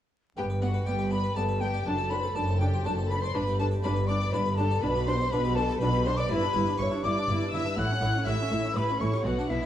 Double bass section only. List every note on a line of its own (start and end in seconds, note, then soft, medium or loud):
0.37 0.81 G1 medium
0.86 1.30 G1 medium
1.36 1.80 G1 medium
1.86 2.30 F#1 medium
2.35 2.79 F#1 loud
2.85 3.28 F#1 medium
3.35 3.78 G1 medium
3.84 4.28 G1 medium
4.34 4.77 G1 medium
4.83 5.26 B1 medium
5.32 5.75 B1 medium
5.81 6.24 B1 medium
6.30 6.38 G1 medium
6.55 6.63 G1 loud
6.79 6.87 G1 medium
7.03 7.11 G1 medium
7.28 7.36 G1 medium
7.53 7.61 G1 medium
7.77 7.85 A1 medium
8.02 8.10 A1 medium
8.26 8.34 A1 medium
8.51 8.59 A1 medium
8.76 8.84 A1 medium
9.00 9.08 A1 medium
9.25 9.33 B1 medium
9.50 9.58 B1 medium